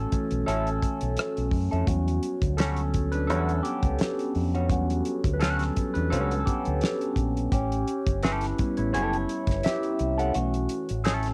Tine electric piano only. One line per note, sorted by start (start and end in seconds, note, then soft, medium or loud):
0.00 0.12 A3 medium
0.00 0.11 C#4 medium
0.00 1.87 F#4 medium
0.00 0.45 A4 medium
0.12 0.59 E3 soft
0.12 0.60 A3 soft
0.12 0.47 C#4 medium
0.46 1.49 C#4 medium
0.46 1.48 A4 medium
1.87 2.36 F#3 soft
1.87 2.36 G3 soft
1.87 2.55 B3 soft
1.87 2.37 C#4 medium
1.87 2.60 F#4 medium
2.57 3.10 C#4 medium
2.57 3.14 A4 medium
3.12 3.29 D4 medium
3.12 3.29 B4 medium
3.27 3.62 C#4 medium
3.27 3.64 A4 medium
3.63 4.31 B3 medium
3.63 4.30 G4 medium
4.69 5.72 F#3 soft
4.69 5.72 G3 soft
4.69 5.31 B3 medium
4.69 5.41 C#4 soft
4.69 5.36 F#4 medium
5.34 5.40 B4 medium
5.40 5.92 C#4 medium
5.40 5.96 A4 medium
5.94 6.11 D4 medium
5.94 6.09 B4 medium
6.10 6.39 C#4 medium
6.10 6.37 A4 medium
6.40 6.46 A4 medium
6.45 7.14 B3 medium
6.45 7.12 G4 medium
7.52 8.20 C#4 medium
7.52 8.19 G4 medium
8.23 8.74 E4 medium
8.23 8.79 B4 medium
8.59 9.60 G3 soft
8.59 9.60 B3 soft
8.59 9.61 C#4 soft
8.77 8.93 E4 medium
8.77 8.93 C#5 medium
8.94 9.61 E4 medium
8.94 9.66 C#5 loud
9.64 10.15 G4 medium
9.64 10.20 E5 medium
10.19 10.34 A4 medium
10.19 10.35 F#5 medium
10.35 10.83 E3 medium
10.35 11.02 A3 medium
10.35 10.83 C#4 medium
10.35 11.07 F#4 medium
11.06 11.34 C#4 medium
11.06 11.34 A4 medium